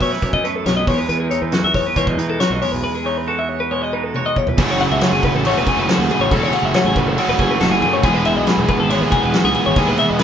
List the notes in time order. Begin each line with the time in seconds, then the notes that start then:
Already playing: E3 A3 B3
0.01 E4 C#5, kick, snare, open hi-hat
0.12 B4, snare
0.22 F#2 C#5, kick, closed hi-hat
0.33 D#5, kick
0.44 F#2 A3 B4, closed hi-hat
0.56 A4
0.66 B1 B3 C#5, snare, closed hi-hat
0.77 D#5
0.87 E2 G#3 C#5, kick, open hi-hat
0.98 B4
1.09 E2 B4, closed hi-hat
1.20 G#4
1.30 E3 D#4 C#5, closed hi-hat
1.42 E2 B4
1.52 F#4 A4, snare, closed hi-hat
1.64 E2 E5
1.74 C#5, kick, snare, open hi-hat
1.87 B4
1.96 E2 B2 G#3 C#5, kick, closed hi-hat
2.07 D#5, kick
2.17 E3 D#4 B4, closed hi-hat
2.30 A4
2.40 F#4 C#5, snare, closed hi-hat
2.50 B1 D#5
2.62 E2 G#3 C#5, open hi-hat
2.72 B1 B4
2.84 B4
2.95 G#4
3.05 E3 D#4 C#5
3.18 B4
3.28 F#4 A4
3.39 E5
3.49 C#5
3.60 B4
3.71 B2 G#3 C#5
3.82 D#5
3.93 D#4 B4
4.04 A4
4.14 F#4 C#5, high tom
4.26 D#5
4.36 E2 C#5, kick
4.47 B4, floor tom
4.58 F#1 F#2 C#3 F#3 A3 C#4 F#4 A4, kick, crash
4.70 C#5
4.80 F#5, crash
4.91 C#2 E5
5.01 C#5, snare, crash
5.12 F#1 G#4
5.23 B4, kick, crash
5.34 A1 A4
5.45 F#2 C#3 F#3 A3 C#4 F#4 C#5, crash
5.55 E1 B4
5.67 G#4, kick, crash
5.77 F#1 B4
5.89 A4, snare, crash
5.98 D#2 G#4, snare
6.11 G#4, crash
6.20 A1 C#5
6.31 E1 F#2 C#3 F#3 A3 C#4 F#4 A4, kick, crash
6.43 C#5
6.53 F#5, crash
6.63 F#1 E5
6.74 C#5, snare, crash
6.84 A1 G#4
6.96 B4, kick, crash
7.07 F#1 A4
7.17 F#2 C#3 F#3 A3 C#4 F#4 C#5, crash
7.28 E1 B4
7.39 F#1 G#4, kick, crash
7.51 B4
7.61 F#1 A4, snare, crash
7.71 G#4, snare
7.81 F#2 G#4, crash
7.93 C#5
8.03 E1 E3 G#3 B3 E4 G#4, kick, crash
8.14 B4
8.25 E5, crash
8.35 B1 D#5
8.47 B4, snare, crash
8.57 E1 G#4
8.69 B4, kick, crash
8.80 G#1 A4
8.90 E3 G#3 B3 E4 G#4 C#5, crash
9.01 D#2 B4
9.12 G#4, kick, crash
9.23 E1 B4
9.34 A4, snare, crash
9.44 C#2 G#4, snare
9.54 G#4, crash
9.66 G#1 C#5
9.76 D#2 E3 G#3 B3 E4 G#4, kick, crash
9.88 B4
9.98 E5, crash
10.10 E1 D#5
10.19 snare, crash